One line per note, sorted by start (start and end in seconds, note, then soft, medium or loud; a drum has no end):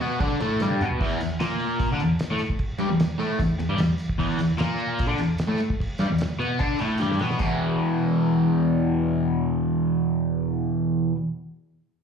0.01 0.20 B2 medium
0.01 0.20 B3 loud
0.01 crash medium
0.20 0.39 D3 loud
0.20 0.40 D4 loud
0.20 kick loud
0.20 tambourine soft
0.20 crash medium
0.40 0.59 A2 loud
0.40 0.60 A3 loud
0.40 tambourine medium
0.40 crash medium
0.60 0.79 G2 medium
0.60 0.80 G3 loud
0.60 snare medium
0.60 tambourine loud
0.70 high tom medium
0.81 1.00 B2 medium
0.81 1.00 B3 loud
0.81 mid tom loud
0.81 tambourine medium
0.91 floor tom loud
1.00 1.19 E2 medium
1.00 1.20 E3 loud
1.00 kick loud
1.00 crash loud
1.00 crash medium
1.21 1.36 E2 medium
1.21 tambourine medium
1.21 crash medium
1.31 snare soft
1.40 1.89 A#2 loud
1.40 1.90 A#3 loud
1.40 snare loud
1.40 tambourine loud
1.40 crash medium
1.60 tambourine soft
1.60 crash medium
1.79 kick loud
1.79 tambourine medium
1.79 crash medium
1.92 2.00 D3 loud
1.92 2.01 D4 loud
2.00 2.16 E2 medium
2.00 tambourine medium
2.00 crash medium
2.19 snare loud
2.19 tambourine medium
2.19 crash medium
2.31 2.39 A2 loud
2.31 2.40 A3 loud
2.38 muted overdriven electric guitar stroke medium
2.38 tambourine medium
2.38 crash medium
2.50 kick medium
2.59 kick loud
2.59 crash medium
2.78 2.88 G2 medium
2.78 2.89 G3 loud
2.78 tambourine medium
2.78 crash medium
2.90 3.05 E2 medium
2.90 snare soft
3.00 snare loud
3.00 tambourine loud
3.00 crash medium
3.19 3.38 A2 loud
3.19 3.39 A3 loud
3.19 tambourine soft
3.19 crash medium
3.38 3.55 E2 medium
3.38 kick loud
3.38 tambourine medium
3.38 crash medium
3.59 3.69 E2 medium
3.59 tambourine medium
3.59 crash medium
3.69 3.77 G2 loud
3.69 3.79 G3 loud
3.77 3.94 E2 medium
3.77 snare loud
3.77 tambourine loud
3.77 crash medium
3.98 tambourine medium
3.98 crash medium
4.10 kick medium
4.18 4.38 E2 loud
4.18 4.38 E3 loud
4.18 kick loud
4.18 crash medium
4.39 4.55 E2 medium
4.39 tambourine medium
4.39 crash medium
4.51 snare soft
4.58 5.07 A#2 loud
4.58 5.08 A#3 loud
4.58 snare loud
4.58 tambourine loud
4.58 crash medium
4.78 tambourine soft
4.78 crash medium
4.99 kick loud
4.99 tambourine medium
4.99 crash loud
5.08 5.18 D3 loud
5.08 5.18 D4 loud
5.17 5.34 E2 medium
5.17 tambourine medium
5.17 crash medium
5.38 snare loud
5.38 tambourine loud
5.38 crash medium
5.48 5.58 A2 medium
5.48 5.58 A3 loud
5.58 muted overdriven electric guitar stroke medium
5.58 tambourine medium
5.58 crash medium
5.70 kick medium
5.80 kick loud
5.80 crash medium
5.98 6.08 G2 medium
5.98 6.09 G3 loud
5.98 tambourine medium
5.98 crash medium
6.09 6.25 E2 medium
6.09 snare soft
6.18 snare loud
6.18 tambourine loud
6.18 crash medium
6.39 6.58 B2 medium
6.39 6.59 B3 loud
6.39 tambourine soft
6.39 crash medium
6.59 6.79 D3 loud
6.59 6.79 D4 loud
6.59 kick loud
6.59 tambourine medium
6.59 crash medium
6.78 6.99 A2 medium
6.78 7.00 A3 loud
6.78 tambourine medium
6.78 crash medium
6.98 7.18 G2 medium
6.98 7.19 G3 loud
6.98 snare medium
6.98 tambourine medium
7.11 snare medium
7.19 7.39 B2 medium
7.19 7.39 B3 loud
7.19 snare medium
7.19 tambourine medium
7.30 snare medium
7.38 11.12 E2 loud
7.38 11.15 B2 loud
7.38 kick loud
7.38 tambourine medium
7.38 splash medium
7.42 11.16 E3 loud